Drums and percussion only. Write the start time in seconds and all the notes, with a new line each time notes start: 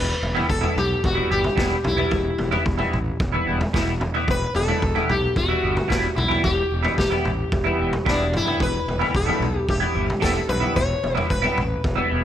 0.23 floor tom
0.36 floor tom
0.49 kick, mid tom
0.64 floor tom
0.78 mid tom
1.04 kick, floor tom
1.44 floor tom, mid tom
1.58 kick, snare
1.84 floor tom, mid tom
1.98 floor tom
2.11 kick, floor tom
2.38 floor tom
2.52 floor tom
2.66 kick, mid tom
2.79 floor tom
2.93 mid tom
3.20 kick, floor tom
3.61 floor tom, mid tom
3.74 kick, snare
4.01 floor tom, mid tom
4.15 floor tom
4.28 kick, floor tom
4.55 floor tom
4.68 floor tom
4.82 kick, mid tom
4.96 floor tom
5.09 mid tom
5.36 kick, floor tom
5.77 floor tom, mid tom
5.90 kick, snare
6.18 floor tom, mid tom
6.31 floor tom
6.44 kick, floor tom
6.85 floor tom
6.98 kick, snare, mid tom
7.12 floor tom
7.25 mid tom
7.52 kick, floor tom
7.93 floor tom, mid tom
8.06 kick, snare
8.33 mid tom
8.47 floor tom
8.60 kick, floor tom
8.88 floor tom
9.01 floor tom
9.15 kick, mid tom
9.29 floor tom
9.42 mid tom
9.69 kick, floor tom
10.10 floor tom, mid tom
10.22 kick, snare
10.49 floor tom, mid tom
10.63 floor tom
10.76 kick, floor tom
11.04 floor tom
11.17 floor tom
11.30 kick, mid tom
11.44 floor tom
11.58 mid tom
11.84 kick, floor tom